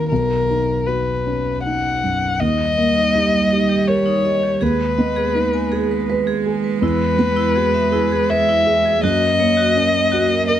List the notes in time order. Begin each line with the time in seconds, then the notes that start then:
Already playing: D#3 C4 D#4 F#4
0.09 B1 A#4
0.50 D#4
0.87 F#4 B4
1.26 C#4
1.63 D#4 F#5
2.03 F#2
2.39 D#2 G3 D#4 D#5
2.77 A#3 A#4
2.95 D#4
3.14 D#4 G4
3.32 D#5
3.51 D#4 G4
3.69 G4
3.88 G4 A#4 C#5
4.06 D#4
4.24 G4 D#5
4.43 G4
4.61 D#2 G#3 G#4 B4
4.98 B3 D#5
5.16 G#4
5.35 D#4 B4
5.53 G#5
5.72 G#4
5.91 B4
6.09 B4
6.27 G#4
6.46 G#4 G#5
6.64 B4
6.81 E2 E4 B4
7.18 B3 B4
7.37 E4
7.55 F#4 G#4
7.74 E5
7.91 E4 G#4
8.12 G#4
8.30 G#4 B4 E5
8.49 E4
8.66 G#4 E5
8.85 G#4
9.03 F#2 A#3 F#4 D#5
9.39 A#3 C#5
9.57 F#4
9.75 C#4 A#4
9.94 D#5
10.12 F#4
10.30 A#4
10.48 A#4 D#5